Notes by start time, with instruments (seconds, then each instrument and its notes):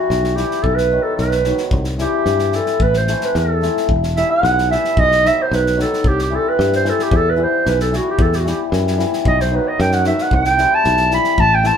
Already playing: hammered dulcimer E3 G3, clarinet F#4
0.10 fretless electric bass B1, snare
0.24 snare
0.35 hammered dulcimer E3 G3 B3 E4, clarinet G4, snare
0.51 snare
0.63 fretless electric bass B1, clarinet A4, kick
0.75 clarinet B4, snare
0.91 hammered dulcimer D#3 F#3 B3 D#4
1.03 clarinet A4
1.16 fretless electric bass B1, clarinet B4, snare
1.31 snare
1.44 hammered dulcimer D#3 F#3 B3 D#4, snare
1.58 snare
1.71 fretless electric bass C2, kick
1.84 snare
1.98 hammered dulcimer E3 G3 C4 E4, clarinet G4, snare
2.25 fretless electric bass G2, snare
2.39 snare
2.52 hammered dulcimer E3 G3 C4 E4, clarinet A4, snare
2.66 snare
2.80 fretless electric bass A1, clarinet B4, kick
2.93 clarinet C5, snare
3.07 hammered dulcimer E3 A3 C4 E4, snare
3.21 clarinet B4, snare
3.35 fretless electric bass E2, clarinet A4, snare
3.61 hammered dulcimer E3 A3 C4 E4, snare
3.77 snare
3.89 fretless electric bass E1, kick
4.03 snare
4.16 hammered dulcimer E3 G3 B3 E4, clarinet E5, snare
4.30 clarinet F#5
4.43 fretless electric bass B1, snare
4.58 snare
4.70 hammered dulcimer E3 G3 B3 E4, clarinet E5, snare
4.84 snare
4.97 fretless electric bass B1, clarinet D#5, kick
5.11 snare
5.23 hammered dulcimer D#3 F#3 B3 D#4, snare
5.27 clarinet E5
5.42 clarinet C5
5.51 fretless electric bass B1, clarinet B4, snare
5.66 snare
5.77 hammered dulcimer D#3 F#3 B3 D#4, snare
5.81 clarinet A4
5.93 snare
6.04 fretless electric bass C2, clarinet G4, kick
6.19 clarinet G4, snare
6.30 hammered dulcimer E3 G3 C4 E4
6.36 clarinet A4
6.49 clarinet B4
6.59 fretless electric bass G2, snare
6.72 clarinet C5, snare
6.84 hammered dulcimer E3 G3 C4 E4, snare
6.89 clarinet A4
6.99 clarinet G4, snare
7.11 fretless electric bass E2, kick
7.16 clarinet A4
7.30 clarinet B4
7.36 hammered dulcimer E3 G3 B3 E4
7.43 clarinet C5
7.66 fretless electric bass B1, clarinet B4, snare
7.80 clarinet A4, snare
7.91 hammered dulcimer E3 G3 B3 E4, snare
7.96 clarinet F#4
8.10 clarinet G4
8.19 fretless electric bass E2, clarinet A4, kick
8.33 clarinet G4, snare
8.40 clarinet F#4
8.45 hammered dulcimer E3 G3 B3 E4, clarinet G4, snare
8.72 fretless electric bass F#2, snare
8.87 snare
8.98 hammered dulcimer E3 G3 B3 E4, snare
9.13 snare
9.25 fretless electric bass B1, clarinet D#5, kick
9.40 clarinet C5, snare
9.51 hammered dulcimer D#3 F#3 B3 D#4, clarinet B4
9.68 clarinet D#5
9.79 fretless electric bass F#2, clarinet G5, snare
9.91 clarinet F#5, snare
10.04 hammered dulcimer D#3 F#3 B3 D#4, clarinet E5, snare
10.18 clarinet F#5, snare
10.31 fretless electric bass C2, clarinet G5, kick
10.44 snare
10.58 hammered dulcimer E3 G3 C4 E4, snare
10.75 clarinet A5
10.84 fretless electric bass B1, snare
10.97 snare
11.10 hammered dulcimer E3 G3 C4 E4, snare
11.14 clarinet B5
11.24 snare
11.38 fretless electric bass A1, clarinet A5, kick
11.55 clarinet G5
11.63 hammered dulcimer E3 A3 C4 E4, clarinet A5, snare